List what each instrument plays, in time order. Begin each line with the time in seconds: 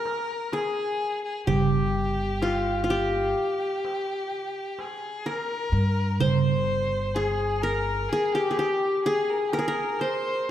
Already playing: qanun G#4 A#4, violin A#4
0.05 darbuka tek
0.53 qanun G#4, violin G#4, darbuka tek
1.24 violin G#4
1.47 upright bass G1, violin G4, qanun G4, darbuka dum
2.42 qanun F4, darbuka tek
2.84 qanun F4
2.90 violin G4, qanun G4
3.38 darbuka ka
3.85 darbuka tek
4.32 darbuka ka
4.79 violin G#4, darbuka tek
5.26 qanun A#4, violin A#4, darbuka tek
5.72 upright bass G2
6.20 upright bass G1, qanun C5, violin C5, darbuka dum
7.14 violin G#4, qanun G#4, darbuka tek
7.62 violin A#4, qanun A#4
8.09 violin G#4, qanun G#4, darbuka ka
8.32 violin G4, qanun G4
8.51 qanun G#4
8.57 qanun G4, darbuka tek
9.04 violin G#4, qanun G#4, darbuka ka
9.30 violin A#4
9.38 violin G#4
9.49 violin G4, darbuka tek
9.53 violin G#4, qanun A#4
9.59 qanun G#4
9.68 qanun A#4, violin A#4
10.00 qanun C5, violin C5, darbuka tek